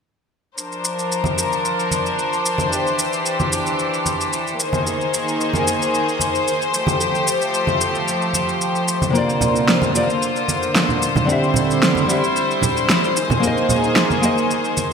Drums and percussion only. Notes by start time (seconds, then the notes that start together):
0.58 shaker
0.72 shaker
0.85 shaker
0.99 shaker
1.12 shaker
1.24 high conga, shaker
1.38 shaker
1.53 shaker
1.65 shaker
1.79 shaker
1.91 high conga, shaker
2.06 shaker
2.19 shaker
2.33 shaker
2.46 shaker
2.58 high conga, shaker
2.73 shaker
2.87 shaker
2.99 shaker
3.13 shaker
3.26 shaker
3.40 high conga, shaker
3.53 shaker
3.67 shaker
3.79 shaker
3.94 shaker
4.06 high conga, shaker
4.21 shaker
4.33 shaker
4.47 shaker
4.60 shaker
4.73 high conga, shaker
4.87 shaker
5.01 shaker
5.14 shaker
5.28 shaker
5.41 shaker
5.54 high conga, shaker
5.68 shaker
5.82 shaker
5.94 shaker
6.09 shaker
6.20 high conga, shaker
6.35 shaker
6.48 shaker
6.62 shaker
6.74 shaker
6.87 high conga, shaker
7.00 shaker
7.15 shaker
7.27 shaker
7.42 shaker
7.54 shaker
7.67 high conga, shaker
7.81 shaker
7.95 shaker
8.08 shaker
8.22 shaker
8.33 high conga, shaker
8.49 shaker
8.61 shaker
8.75 shaker
8.88 shaker
9.02 high conga, shaker
9.15 shaker
9.29 shaker
9.41 low conga, shaker
9.56 shaker
9.68 snare, shaker
9.82 high conga, shaker
9.95 shaker
10.10 shaker
10.22 shaker
10.36 shaker
10.48 high conga, shaker
10.63 shaker
10.75 snare, shaker
10.89 low conga, shaker
11.02 shaker
11.15 high conga, low conga, shaker
11.29 shaker
11.44 shaker
11.54 low conga, shaker
11.71 shaker
11.83 snare, shaker
11.95 high conga, shaker
12.09 shaker
12.24 shaker
12.36 shaker
12.51 shaker
12.62 high conga, low conga, shaker
12.77 shaker
12.89 snare, shaker
13.04 shaker
13.17 shaker
13.30 high conga, low conga, shaker
13.43 shaker
13.57 shaker
13.69 low conga, shaker
13.84 shaker
13.96 snare, shaker
14.10 high conga, shaker
14.23 shaker
14.38 shaker
14.51 shaker
14.65 shaker
14.77 high conga, shaker